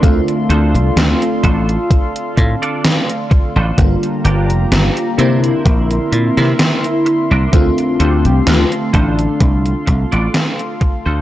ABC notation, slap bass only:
X:1
M:4/4
L:1/16
Q:"Swing 16ths" 1/4=64
K:Dm
V:1 name="Slap bass" clef=bass
D,, z D,, C,, D,, z A,,, z3 A,, z4 A,,, | G,,, z G,,, F,,, G,,, z C, z B,,, z B,, C, z3 C,, | D,, z D,, C,, D,, z A,,, z C,, z C,, A,,, z3 D,, |]